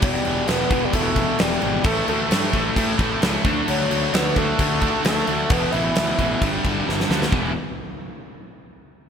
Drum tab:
CC |x-x-x-x-x-x-x-x-|x-x-x-x-x-x-x-x-|x-x-x-x-x-x-x-x-|x-x-x-x-x-x-----|
SD |----o-------oo--|----o-------o---|----o-------oo--|----o-------oooo|
BD |o-----o-o-o-----|o-----o-o-o---o-|------o-o-o-----|o-----o-o-o-----|

CC |----------------|
SD |----------------|
BD |o---------------|